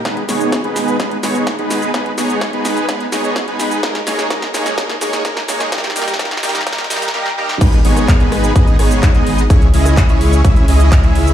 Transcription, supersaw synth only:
\new Staff \with { instrumentName = "Supersaw synth" } { \time 4/4 \key gis \minor \tempo 4 = 127 <gis b dis' gis' b'>16 r16 <gis b dis' gis' cis''>8. <gis b dis' gis' b'>8. <gis b dis' gis' b'>16 r16 <gis b dis' gis' cis''>8. <gis b dis' gis' b'>8. | <gis b dis' gis' b'>16 r16 <gis b dis' gis' cis''>8. <gis b dis' gis' b'>8. <gis b dis' gis' b'>16 r16 <gis b dis' gis' cis''>8. <gis b dis' gis' b'>8. | <gis ais dis' gis' ais'>16 r16 <gis ais dis' gis' cis''>8 <gis ais dis' gis' ais'>16 r16 <gis ais dis' gis' cis''>8 <gis ais dis' gis' ais'>16 r16 <gis ais dis' gis' cis''>8 <gis ais dis' gis' ais'>16 r16 <gis ais dis' gis' cis''>8 | <g ais dis' g' ais'>16 r16 <g ais dis' g' ais'>16 r16 <g ais dis' g' ais'>16 r16 <g ais dis' g' ais'>16 r16 <g ais dis' g' ais'>16 r16 <g ais dis' g' ais'>16 r16 <g ais dis' g' ais'>16 r16 <g ais dis' g' ais'>16 r16 |
<gis b dis' gis' b'>16 r16 <gis b dis' gis' cis''>8. <gis b dis' gis' b'>8. <gis b dis' gis' dis''>8 <gis b dis' gis' cis''>8. <gis b dis' gis' dis''>8 r16 | <gis cis' e' gis' cis''>16 r16 <gis cis' e' gis' dis''>8. <gis cis' e' gis' cis''>8. <gis cis' e' gis' e''>8 <gis cis' e' gis' dis''>8. <gis cis' e' gis' e''>8 r16 | }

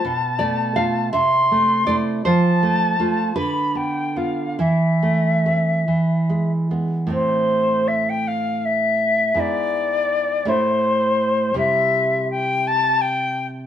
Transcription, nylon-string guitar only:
\new Staff \with { instrumentName = "Nylon-string guitar" } { \time 6/8 \key a \minor \tempo 4. = 54 << { r8 d''8 f''8 e''4 d''8 | c''4. b'4. | e'2~ e'8 r8 | <a, a c'>2. |
<gis, b e'>4. <a, a e'>4. | <c g e'>2. | } \\ { b,8 a8 <a f'>8 c8 a8 <a e'>8 | f8 a8 <a f'>8 d8 b8 <b f'>8 | e8 a8 <a c'>8 e8 gis8 <gis b>8 | r2. |
r2. | r2. | } >> }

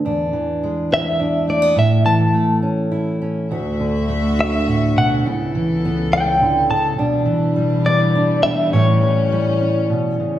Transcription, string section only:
\new Staff \with { instrumentName = "String section" } { \clef bass \time 3/4 \key a \mixolydian \tempo 4 = 104 << { r2. | r2. | <d, e''>2. | <cis, a'>2. |
<b, d'>2. | <a, cis'>2. | } \\ { r2. | r2. | <d fis'>2. | <cis b>2. |
<e g>2.~ | <e g>2. | } >> }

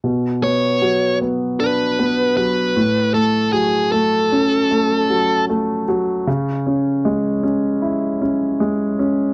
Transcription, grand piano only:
\new Staff \with { instrumentName = "Grand piano" } { \time 4/4 \key fis \minor \tempo 4 = 77 b,8 b8 fis8 b8 d'8 b8 fis8 a,8 | a8 fis8 a8 cis'8 a8 fis8 a8 fis8 | cis8 cis'8 gis8 cis'8 e'8 cis'8 gis8 cis'8 | }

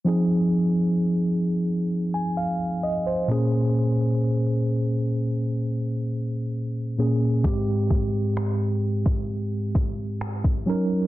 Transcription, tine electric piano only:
\new Staff \with { instrumentName = "Tine electric piano" } { \time 4/4 \key f \minor \tempo 4 = 65 << { r2 r16 aes''16 f''8 ees''16 c''8 r16 | r1 | r1 | } \\ { <f c' ees' aes'>2.~ <f c' ees' aes'>8 <bes, bes des' aes'>8~ | <bes, bes des' aes'>2.~ <bes, bes des' aes'>8 <bes, bes des' aes'>8 | <aes, aes c' g'>2.~ <aes, aes c' g'>8 <ges des' ees' bes'>8 | } >> }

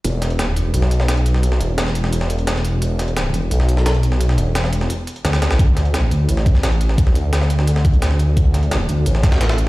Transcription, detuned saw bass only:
\new Staff \with { instrumentName = "Detuned saw bass" } { \clef bass \time 4/4 \key d \dorian \tempo 4 = 173 e,,4. e,,8 b,,2~ | b,,8 e,,4. e,,2 | e,,4. e,,8 b,,2~ | b,,8 e,,4. r4 d,4 |
d,4. d,8 a,,2~ | a,,8 d,4. d,2 | d,4. d,8 a,,2 | }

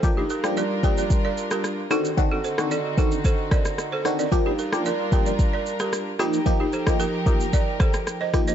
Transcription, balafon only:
\new Staff \with { instrumentName = "Balafon" } { \time 4/4 \key g \minor \tempo 4 = 112 r16 <ees' g'>16 <g' bes'>16 r16 <bes' d''>16 r16 <g' bes'>16 <bes' d''>16 r16 <bes' d''>16 r16 <g' bes'>16 r8 <fis' a'>16 r16 | r16 <fis' a'>16 <a' c''>16 r16 <a' d''>16 r16 <fis' a'>16 r16 <a' c''>16 r16 <bes' d''>16 r8 <a' c''>16 r16 <bes' d''>16 | r16 <ees' g'>16 <g' bes'>16 r16 <bes' d''>16 r16 <g' bes'>16 <bes' d''>16 r16 <bes' d''>16 r16 <g' bes'>16 r8 <ees' g'>16 r16 | r16 <ees' g'>16 <a' c''>16 r16 <g' bes'>16 r16 <g' bes'>16 r16 <bes' d''>16 r16 <a' c''>16 r8 <c'' ees''>16 r16 <c'' ees''>16 | }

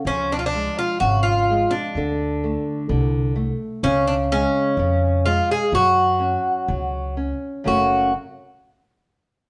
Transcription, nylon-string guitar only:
\new Staff \with { instrumentName = "Nylon-string guitar" } { \clef bass \time 2/4 \key fis \minor \tempo 4 = 63 eis8 gis8 cis8 gis8 | d8 a8 d8 a8 | cis8 gis8 cis8 gis8 | fis8 cis'8 fis8 cis'8 |
<fis, cis fis a cis'>8 r4. | }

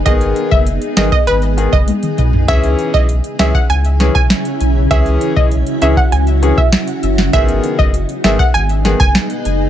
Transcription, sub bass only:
\new Staff \with { instrumentName = "Sub bass" } { \clef bass \time 4/4 \key cis \minor \tempo 4 = 99 gis,,8 r16 fis,,8 r16 gis,,16 r16 gis,,8. fis,,16 r8 b,,8 | cis,8 r16 b,,8 r16 cis,16 r16 cis,8. b,,16 r8 b,,8 | cis,8 r16 b,,8 r16 cis,16 r16 cis,8. b,,16 r8 fis,,8 | gis,,8 r16 fis,,8 r16 gis,,16 r16 gis,,8. fis,,16 r8 fis,,8 | }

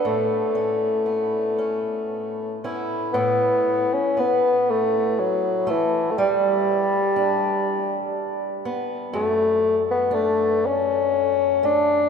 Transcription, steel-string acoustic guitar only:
\new Staff \with { instrumentName = "Steel-string acoustic guitar" } { \time 6/8 \key a \mixolydian \tempo 4. = 40 a,8 cis'8 b8 cis'4 <b cis' e'>8 | a,4 b4. a8 | g4 d'4. b8 | fis,4 d'4. a8 | }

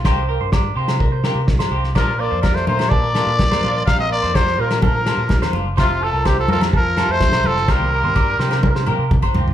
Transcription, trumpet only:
\new Staff \with { instrumentName = "Trumpet" } { \time 4/4 \key bes \major \tempo 4 = 126 r1 | bes'8 d''8 bes'16 c''16 c''8 d''2 | f''16 ees''16 d''8 c''8 bes'8 bes'4. r8 | f'8 a'8 g'16 a'16 a'8 bes'8. c''8. a'8 |
bes'2. r4 | }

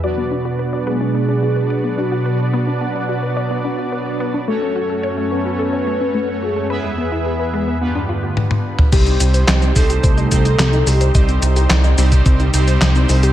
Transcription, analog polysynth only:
\new Staff \with { instrumentName = "Analog polysynth" } { \time 4/4 \key b \dorian \tempo 4 = 108 <b d' fis' b' d''>1~ | <b d' fis' b' d''>1 | <a cis' fis' a' cis''>1 | <b e' gis' b' e''>2 <b d' f' g' b'>2 |
\key c \dorian <g c' ees' g' c''>4. <g c' ees' g' c''>4 <g c' ees' g' c''>4. | <g c' ees' g' c''>4. <g c' ees' g' c''>4 <g c' ees' g' c''>4. | }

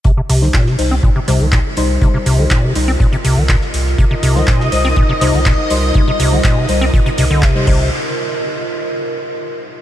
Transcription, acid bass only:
\new Staff \with { instrumentName = "Acid bass" } { \clef bass \time 4/4 \key c \minor \tempo 4 = 122 c16 c16 c16 ees16 bes,16 c16 r16 c'16 bes,16 c16 c16 ees16 bes,16 r8. | c16 c16 c16 ees16 bes,16 c16 r16 c'16 bes,16 c16 c16 ees16 bes,16 r8. | c16 c16 c16 ees16 bes,16 c16 r16 c'16 bes,16 c16 c16 ees16 bes,16 r8. | c16 c16 c16 ees16 bes,16 c16 r16 c'16 bes,16 c16 c16 d16 c8 c8 |
r1 | }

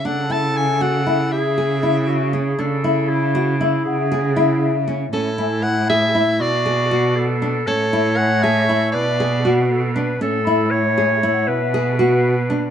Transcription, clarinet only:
\new Staff \with { instrumentName = "Clarinet" } { \time 5/8 \key a \major \tempo 4 = 118 a'2~ a'8 | gis'4. fis'8 gis'8 | a'4 e'4. | gis'2 r8 |
e'2~ e'8 | fis'4. a'4 | cis''2~ cis''8 | b'4 r8 a'8 b'8 |
a'4 cis''4. | b'2~ b'8 | }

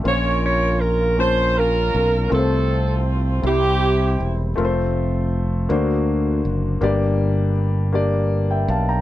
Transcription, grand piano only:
\new Staff \with { instrumentName = "Grand piano" } { \time 6/8 \key f \major \tempo 4. = 53 << { bes,4. r4. | c4. c4. | r4. d4. | g,4. r8. <e'' g''>16 <f'' a''>16 <g'' bes''>16 | } \\ { <bes des' f' c'' des''>4 r8 <bes des' f' a''>4 r8 | <a c' f' bes' c''>4 r8 <g c' e' c''>4 r8 | <a c' f' bes' c''>4 r8 <ais d' fis' c''>4 r8 | <bes d' g' d''>4 r8 <bes d' g' d''>4 r8 | } >> }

